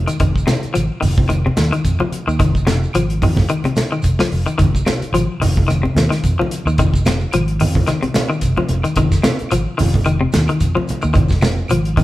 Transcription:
0.07 clean electric guitar D#3, closed hi-hat, claves, shekere
0.20 fingered electric bass F1, clean electric guitar D#3, kick, closed hi-hat, low conga, shekere
0.36 kick, shekere
0.47 clean electric guitar C3, snare, closed hi-hat, high conga, claves, shekere
0.63 muted fingered electric bass stroke, closed hi-hat, shekere
0.74 fingered electric bass G#1, clean electric guitar F3, closed hi-hat, claves, shekere
1.01 fingered electric bass F1, clean electric guitar D#3, open hi-hat, low conga, shekere
1.18 kick, high conga, low conga
1.28 clean electric guitar D#3, closed hi-hat, high conga, claves, shekere
1.46 clean electric guitar C3, high conga
1.57 fingered electric bass D#2, snare, closed hi-hat, high conga, shekere
1.72 clean electric guitar D#3, closed hi-hat, claves, shekere
1.84 fingered electric bass F2, kick, closed hi-hat, shekere
2.00 clean electric guitar F3, high conga
2.12 muted fingered electric bass stroke, closed hi-hat, shekere
2.27 fingered electric bass D#2, clean electric guitar D#3, claves, shekere
2.40 fingered electric bass F1, clean electric guitar D#3, kick, closed hi-hat, low conga, shekere
2.55 kick, shekere
2.67 clean electric guitar C3, snare, closed hi-hat, high conga, claves, shekere
2.83 shekere
2.93 fingered electric bass G#1, clean electric guitar F3, closed hi-hat, claves, shekere
3.10 closed hi-hat
3.22 fingered electric bass F2, clean electric guitar D#3, kick, open hi-hat, low conga, shekere
3.37 kick, snare, high conga, low conga
3.49 clean electric guitar D#3, closed hi-hat, claves, shekere
3.64 clean electric guitar C3, closed hi-hat, high conga
3.76 snare, closed hi-hat, high conga, shekere
3.92 clean electric guitar D#3, claves, shekere
4.02 fingered electric bass F1, kick, closed hi-hat, shekere
4.19 clean electric guitar F3, snare, high conga
4.32 fingered electric bass F1, open hi-hat, shekere
4.46 clean electric guitar D#3, closed hi-hat, claves, shekere
4.58 fingered electric bass F1, clean electric guitar D#3, kick, closed hi-hat, low conga, shekere
4.75 kick, shekere
4.86 clean electric guitar C3, snare, closed hi-hat, high conga, claves, shekere
5.02 muted fingered electric bass stroke, closed hi-hat, shekere
5.13 fingered electric bass G#1, clean electric guitar F3, closed hi-hat, claves, shekere
5.40 fingered electric bass F1, clean electric guitar D#3, open hi-hat, low conga, shekere
5.57 kick, high conga
5.68 clean electric guitar D#3, closed hi-hat, high conga, claves, shekere
5.83 clean electric guitar C3, high conga
5.95 fingered electric bass D#2, snare, closed hi-hat, high conga, shekere
6.10 clean electric guitar D#3, snare, closed hi-hat, claves, shekere
6.24 fingered electric bass F2, kick, closed hi-hat, shekere
6.39 clean electric guitar F3, high conga
6.50 muted fingered electric bass stroke, closed hi-hat, shekere
6.65 fingered electric bass D#2, clean electric guitar D#3, claves, shekere
6.78 fingered electric bass F1, clean electric guitar D#3, kick, closed hi-hat, low conga, shekere
6.94 kick, shekere
7.05 clean electric guitar C3, snare, closed hi-hat, high conga, claves, shekere
7.20 shekere
7.31 fingered electric bass G#1, clean electric guitar F3, closed hi-hat, claves, shekere
7.48 closed hi-hat
7.60 fingered electric bass F2, clean electric guitar D#3, open hi-hat, low conga, shekere
7.75 kick, high conga, low conga
7.87 clean electric guitar D#3, snare, closed hi-hat, high conga, claves, shekere
8.03 clean electric guitar C3, closed hi-hat, high conga
8.14 snare, closed hi-hat, high conga, shekere
8.29 clean electric guitar D#3, claves, shekere
8.41 fingered electric bass F1, kick, closed hi-hat, shekere
8.57 clean electric guitar F3, high conga
8.69 fingered electric bass F1, closed hi-hat, high conga, shekere
8.82 clean electric guitar D#3, closed hi-hat, claves, shekere
8.96 fingered electric bass F1, clean electric guitar D#3, kick, closed hi-hat, low conga, shekere
9.12 kick, snare, shekere
9.22 clean electric guitar C3, snare, closed hi-hat, high conga, claves, shekere
9.39 muted fingered electric bass stroke, closed hi-hat, shekere
9.49 fingered electric bass G#1, clean electric guitar F3, closed hi-hat, claves, shekere
9.78 fingered electric bass F1, clean electric guitar D#3, open hi-hat, low conga, shekere
9.94 kick, high conga, low conga
10.04 clean electric guitar D#3, closed hi-hat, claves, shekere
10.21 clean electric guitar C3
10.33 fingered electric bass D#2, snare, closed hi-hat, high conga, shekere
10.47 clean electric guitar D#3, closed hi-hat, claves, shekere
10.60 fingered electric bass F2, kick, closed hi-hat, shekere
10.75 clean electric guitar F3, high conga
10.87 muted fingered electric bass stroke, closed hi-hat, high conga, shekere
11.02 fingered electric bass D#2, clean electric guitar D#3, claves, shekere
11.13 fingered electric bass F1, clean electric guitar D#3, kick, closed hi-hat, low conga, shekere
11.29 kick, snare, shekere
11.41 clean electric guitar C3, snare, closed hi-hat, high conga, claves, shekere
11.57 shekere
11.68 fingered electric bass G#1, clean electric guitar F3, closed hi-hat, claves, shekere
11.85 closed hi-hat
11.97 fingered electric bass F2, clean electric guitar D#3, kick, open hi-hat, low conga, shekere

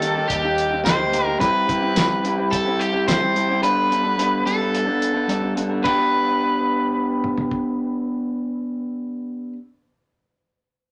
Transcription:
Already playing: fingered electric bass D#3, clean electric guitar G3, overdriven electric guitar A4
0.01 clean electric guitar A#3 D#4 G4, closed hi-hat
0.15 clean electric guitar D#4 G4
0.28 fingered electric bass D#2, overdriven electric guitar G4, kick, closed hi-hat
0.43 clean electric guitar D#4 G4
0.58 closed hi-hat
0.71 clean electric guitar D#4 G4
0.84 fingered electric bass D2, clean electric guitar A#3 D#4 G4, overdriven electric guitar C5, kick, snare, closed hi-hat, tambourine
0.98 clean electric guitar D#4 G4
1.11 clean electric guitar A#3 D#4 G4, closed hi-hat
1.25 clean electric guitar D#4 G4
1.38 clean electric guitar G3 C4 E4 G4, overdriven electric guitar B4, kick, closed hi-hat
1.67 clean electric guitar G3 C4 E4 G4, kick, closed hi-hat
1.80 clean electric guitar C4 E4 G4
1.94 clean electric guitar G3 C4 E4 G4, snare, closed hi-hat, tambourine
2.23 clean electric guitar G3 C4 E4 G4, closed hi-hat
2.37 clean electric guitar C4 E4 G4
2.51 overdriven electric guitar A4, kick, closed hi-hat
2.65 clean electric guitar C4 E4 G4
2.79 overdriven electric guitar G4, closed hi-hat
2.93 clean electric guitar C4 E4 G4
3.07 clean electric guitar G3 C4 E4 G4, overdriven electric guitar C5, kick, snare, closed hi-hat, tambourine
3.21 clean electric guitar C4 E4 G4
3.35 clean electric guitar G3 C4 E4 G4, closed hi-hat
3.49 clean electric guitar C4 E4 G4
3.62 clean electric guitar G3 B3 D4 A4, overdriven electric guitar B4, closed hi-hat
3.90 clean electric guitar G3 B3 D4 A4, closed hi-hat
4.04 clean electric guitar B3 D4 A4
4.17 clean electric guitar G3 B3 D4 A4, closed hi-hat
4.45 clean electric guitar G3 B3 D4 A4, overdriven electric guitar A4, closed hi-hat
4.58 clean electric guitar B3 D4 A4
4.75 closed hi-hat
4.86 clean electric guitar B3 D4 A4
5.02 closed hi-hat
5.14 clean electric guitar B3 D4 A4
5.28 clean electric guitar G3 B3 D4 A4, closed hi-hat
5.41 clean electric guitar B3 D4 A4
5.56 clean electric guitar G3 B3 D4 A4, closed hi-hat
5.69 clean electric guitar B3 D4 A4
5.82 clean electric guitar B3 D4, overdriven electric guitar B4, kick, ride
5.87 clean electric guitar G4
7.24 mid tom
7.38 floor tom
7.51 kick

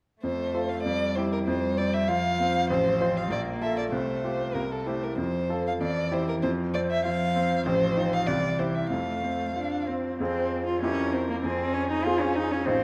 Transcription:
0.22 grand piano F2, cello A3, violin C5
0.54 grand piano F4 A4
0.69 violin F5
0.83 grand piano F2, cello G3, violin D5
1.15 grand piano E4 G4, violin C5
1.32 violin A#4
1.46 grand piano F2, cello G3, violin C5
1.78 grand piano C4, violin D5
1.94 violin E5
2.08 cello F3, grand piano F4, violin F5
2.40 grand piano C4
2.70 grand piano A1, violin C5
3.00 grand piano F4 C5
3.17 violin F5
3.30 grand piano A#1, cello A#3, violin D5
3.62 grand piano F4 A4, violin E5
3.78 violin D5
3.92 grand piano C2, cello A3, violin C5
4.24 grand piano F4 G4
4.54 grand piano C2, cello A#3, violin A#4
4.72 violin A4
4.86 cello A3, grand piano E4 G4, violin C5
5.04 violin A#4
5.17 grand piano F2, cello F3, violin C5
5.49 grand piano F4 A4
5.67 violin F5
5.80 grand piano F2, cello E3, violin D5
6.12 grand piano E4 G4, violin C5
6.29 violin A#4
6.42 grand piano F2, cello F3, violin C5
6.74 grand piano C4, violin D5
6.91 violin E5
7.05 cello F3, grand piano F4, violin F5
7.36 grand piano C4
7.65 grand piano A1, cello F3, violin C5
7.97 grand piano D#4 F4
8.14 violin F5
8.27 grand piano C2, cello E3, violin D5
8.59 grand piano E4 G4, violin C5
8.75 violin E5
8.90 grand piano F2, cello A3, violin F5
9.23 grand piano C4
9.56 cello D4, grand piano F4
9.87 cello C4, grand piano C4
10.19 grand piano F2 C4 F4 G#4, cello C4
10.66 cello F4
10.82 grand piano F2 C4 E4 G4, cello C#4, violin A#4
11.13 cello C4
11.30 cello A#3
11.43 grand piano F2, cello C4, violin G#4
11.73 cello C#4
11.91 cello D#4
12.05 grand piano C4 F4 G#4, cello F4
12.20 cello C#4
12.36 cello D#4
12.52 cello C#4
12.66 grand piano A1 C4 D#4 F4, cello C4, violin C5

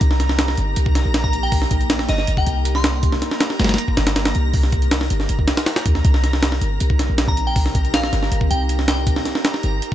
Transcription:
Already playing: ambient pad D#4 G4, synth texture A#5 A#6
0.01 808-style bass C2, ambient pad A#3 A#4, kick, closed hi-hat
0.11 snare
0.20 snare, closed hi-hat
0.29 snare
0.39 snare, closed hi-hat
0.48 snare
0.57 808-style bass G1, closed hi-hat
0.76 808-style bass C2, closed hi-hat
0.86 kick
0.95 snare, closed hi-hat
1.05 808-style bass A#1
1.14 snare, closed hi-hat
1.24 synth bell A#5, kick
1.33 closed hi-hat
1.43 synth bell G5
1.52 kick, open hi-hat
1.62 snare
1.71 kick, closed hi-hat
1.81 closed hi-hat
1.90 snare, closed hi-hat
1.99 snare
2.09 808-style bass G1, synth bell D#5, snare, closed hi-hat
2.18 synth bell D#5, snare
2.27 808-style bass G1, closed hi-hat
2.37 synth bell G5, kick
2.47 808-style bass C2, closed hi-hat
2.65 closed hi-hat
2.75 synth bell C6, snare
2.84 snare, closed hi-hat
3.03 kick, closed hi-hat
3.12 snare
3.22 snare, closed hi-hat
3.31 snare
3.41 snare, closed hi-hat
3.50 snare
3.60 808-style bass G1, snare, closed hi-hat
3.64 snare, closed hi-hat
3.69 snare, closed hi-hat
3.74 snare, closed hi-hat
3.78 closed hi-hat
3.88 kick
3.97 808-style bass G1, snare, closed hi-hat
4.07 snare, closed hi-hat
4.16 snare, closed hi-hat
4.25 snare, closed hi-hat
4.35 808-style bass C2, closed hi-hat
4.54 kick, open hi-hat
4.63 snare
4.72 kick, closed hi-hat
4.82 closed hi-hat
4.91 snare, closed hi-hat
5.01 snare
5.10 808-style bass G1, closed hi-hat
5.20 snare
5.29 808-style bass G1, closed hi-hat
5.39 kick
5.48 snare, closed hi-hat
5.57 snare, closed hi-hat
5.66 snare, closed hi-hat
5.76 snare, closed hi-hat
5.86 808-style bass D#2, kick, closed hi-hat
5.95 snare
6.05 808-style bass C2, ambient pad C4 D#4 G4, synth texture A#5 A#6, kick, closed hi-hat
6.14 snare
6.24 snare, closed hi-hat
6.33 snare
6.43 snare, closed hi-hat
6.52 snare
6.61 808-style bass G1, closed hi-hat
6.80 808-style bass C2, closed hi-hat
6.90 kick
6.99 snare, closed hi-hat
7.10 808-style bass A#1
7.18 snare, closed hi-hat
7.28 synth bell A#5, kick
7.37 closed hi-hat
7.47 synth bell G5
7.56 kick, open hi-hat
7.66 snare
7.75 kick, closed hi-hat
7.85 closed hi-hat
7.94 synth bell F5, snare, closed hi-hat
8.04 snare
8.13 808-style bass G1, snare, closed hi-hat
8.23 snare
8.32 808-style bass G1, closed hi-hat
8.41 kick
8.51 808-style bass C2, synth bell G5, closed hi-hat
8.69 closed hi-hat
8.79 snare
8.88 synth bell G5, snare, closed hi-hat
9.07 kick, closed hi-hat
9.16 snare
9.25 snare, closed hi-hat
9.35 snare
9.45 snare, closed hi-hat
9.54 snare
9.63 808-style bass G1, closed hi-hat
9.82 closed hi-hat

